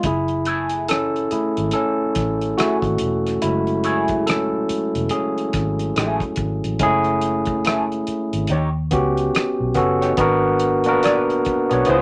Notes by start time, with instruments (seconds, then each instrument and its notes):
0.03 fingered electric bass F#1, tine electric piano E4 G#4, kick, closed hi-hat
0.28 closed hi-hat
0.45 clean electric guitar A3 E4 G#4, closed hi-hat
0.69 closed hi-hat
0.88 tine electric piano C#4 A4, cross-stick, closed hi-hat
1.16 closed hi-hat
1.31 tine electric piano A3 E4 G#4, muted fingered electric bass stroke, closed hi-hat
1.57 fingered electric bass G#1, closed hi-hat
1.71 tine electric piano C#4 A4, closed hi-hat
2.15 fingered electric bass A1, kick, cross-stick, closed hi-hat
2.41 closed hi-hat
2.58 clean electric guitar A3 E4 G#4, tine electric piano A3 F#4, cross-stick, closed hi-hat
2.82 fingered electric bass G#1, kick, closed hi-hat
2.98 fingered electric bass E1, closed hi-hat
3.27 cross-stick, closed hi-hat
3.42 fingered electric bass F#1, tine electric piano F#3 G#3 A3 E4, closed hi-hat
3.67 closed hi-hat
3.84 clean electric guitar A3 E4 G#4, closed hi-hat
4.08 kick, closed hi-hat
4.27 tine electric piano C#4 A4, cross-stick, closed hi-hat
4.69 muted fingered electric bass stroke, closed hi-hat
4.95 fingered electric bass E1, closed hi-hat
5.09 tine electric piano C#4 G#4, closed hi-hat
5.38 closed hi-hat
5.53 fingered electric bass G#1, kick, cross-stick, closed hi-hat
5.79 closed hi-hat
5.96 fingered electric bass A1, clean electric guitar A3 E4 G#4, cross-stick, closed hi-hat
6.20 kick, closed hi-hat
6.36 fingered electric bass G#1, kick, closed hi-hat
6.64 fingered electric bass A1, closed hi-hat
6.79 fingered electric bass F#1, tine electric piano G#3 C#4 E4 G#4, kick, closed hi-hat
6.86 tine electric piano A3
7.04 closed hi-hat
7.21 closed hi-hat
7.46 kick, closed hi-hat
7.65 clean electric guitar A3 E4 G#4, cross-stick, closed hi-hat
7.92 closed hi-hat
8.07 muted fingered electric bass stroke, closed hi-hat
8.33 fingered electric bass G#1, closed hi-hat
8.47 fingered electric bass D#2, clean electric guitar D#4 G4, closed hi-hat
8.52 clean electric guitar C#5
8.91 fingered electric bass C#2, tine electric piano B3 C#4 F#4 G4, kick, closed hi-hat
9.17 closed hi-hat
9.35 cross-stick, closed hi-hat
9.60 fingered electric bass B1
9.74 fingered electric bass F#1, tine electric piano B3 C#4 F#4 A4, kick, closed hi-hat
10.01 clean electric guitar D#4 G4 C#5, cross-stick, closed hi-hat
10.17 fingered electric bass G#1, tine electric piano B3 D4 F#4 A#4, kick, closed hi-hat
10.59 closed hi-hat
10.84 tine electric piano A#3 D4 F#4, closed hi-hat
10.89 tine electric piano B3 A#4
11.02 clean electric guitar F#4 B4 D5, cross-stick, closed hi-hat
11.30 closed hi-hat
11.45 muted fingered electric bass stroke, kick, closed hi-hat
11.69 fingered electric bass B1, tine electric piano B3 D4 F#4 C#5, closed hi-hat
11.85 fingered electric bass C#2, tine electric piano B3 C#4 E4, clean electric guitar F4 B4 C#5, closed hi-hat
11.90 tine electric piano G#4
11.95 tine electric piano F4